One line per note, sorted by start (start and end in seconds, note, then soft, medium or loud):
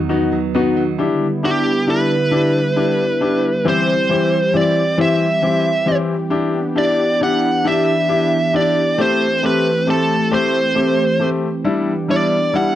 0.00 0.95 E2 loud
0.00 0.95 D#3 medium
0.00 0.31 F#3 medium
0.00 0.95 F#3 medium
0.00 0.10 B3 medium
0.00 0.95 B3 medium
0.00 0.53 D#4 medium
0.00 0.95 F#4 medium
0.09 1.58 B3 medium
0.09 0.36 D#4 medium
0.09 0.36 F#4 medium
0.32 0.76 F#3 medium
0.55 0.81 B3 medium
0.55 1.08 D#4 medium
0.55 0.81 D#4 medium
0.55 0.81 F#4 medium
0.77 1.08 F#3 medium
0.98 3.63 D3 medium
0.98 6.29 G3 medium
0.98 3.63 B3 medium
0.98 1.25 D4 medium
0.98 1.25 E4 medium
0.98 3.63 E4 medium
0.98 1.25 G4 medium
1.43 1.69 D4 medium
1.43 1.69 E4 medium
1.43 1.69 G4 medium
1.43 1.90 G4 medium
1.87 2.14 D4 medium
1.87 2.14 E4 soft
1.87 2.14 G4 medium
1.87 3.69 B4 medium
2.31 2.58 D4 medium
2.31 2.58 E4 medium
2.31 2.58 G4 medium
2.76 3.03 D4 medium
2.76 3.03 E4 soft
2.76 3.03 G4 medium
3.21 3.47 D4 medium
3.21 3.47 E4 medium
3.21 3.47 G4 medium
3.65 3.91 E3 medium
3.65 12.75 E3 medium
3.65 3.91 C4 medium
3.65 6.30 C4 medium
3.65 3.92 E4 medium
3.65 11.61 G4 medium
3.65 3.92 G4 medium
3.69 4.59 C5 medium
4.09 4.36 E3 medium
4.09 4.36 C4 medium
4.09 4.36 E4 medium
4.09 4.36 G4 medium
4.53 4.80 E3 medium
4.53 4.80 C4 soft
4.53 4.80 E4 soft
4.53 4.80 G4 medium
4.53 4.97 D5 medium
4.98 5.24 E3 medium
4.98 5.25 C4 medium
4.98 5.25 E4 medium
4.98 5.25 G4 medium
4.98 5.96 E5 medium
5.42 5.69 E3 medium
5.42 5.69 C4 medium
5.42 5.69 E4 medium
5.42 5.69 G4 medium
5.86 6.13 E3 medium
5.86 6.13 C4 medium
5.86 6.13 E4 medium
5.86 6.13 G4 medium
6.30 8.96 B3 medium
6.30 6.57 D4 medium
6.30 8.96 D4 medium
6.30 6.57 E4 medium
6.30 6.58 G4 medium
6.75 7.02 D4 medium
6.75 7.02 E4 medium
6.75 7.02 G4 medium
6.75 7.19 D5 medium
7.21 7.47 D4 medium
7.21 7.47 E4 medium
7.21 7.47 G4 medium
7.21 7.68 F#5 medium
7.65 7.91 D4 medium
7.65 7.91 E4 medium
7.65 7.92 G4 medium
7.65 8.56 E5 medium
8.09 8.35 D4 medium
8.09 8.35 E4 medium
8.09 8.36 G4 medium
8.53 8.80 D4 medium
8.53 8.80 E4 medium
8.53 8.80 G4 medium
8.53 9.01 D5 medium
8.98 9.24 A3 medium
8.98 11.62 A3 medium
8.98 9.25 C4 medium
8.98 11.63 C4 medium
8.98 9.25 G4 medium
8.98 9.45 C5 medium
9.43 9.69 A3 medium
9.43 9.69 C4 medium
9.43 9.69 G4 medium
9.43 9.90 B4 medium
9.87 10.13 A3 medium
9.87 10.14 C4 soft
9.87 10.13 G4 medium
9.87 10.34 A4 medium
10.31 10.58 A3 medium
10.31 10.58 C4 medium
10.31 10.58 G4 medium
10.31 11.29 C5 medium
10.75 11.01 A3 medium
10.75 11.02 C4 soft
10.75 11.02 G4 medium
11.19 11.46 A3 medium
11.19 11.46 C4 soft
11.19 11.46 G4 medium
11.64 11.91 G3 medium
11.64 12.75 B3 medium
11.64 12.75 D4 medium
11.64 11.91 D4 medium
11.64 11.91 E4 medium
11.64 12.75 G4 medium
12.08 12.35 G3 medium
12.08 12.35 D4 medium
12.08 12.35 E4 medium
12.08 12.56 D5 medium
12.53 12.75 G3 medium
12.53 12.75 D4 medium
12.53 12.75 E4 medium
12.53 12.75 F#5 medium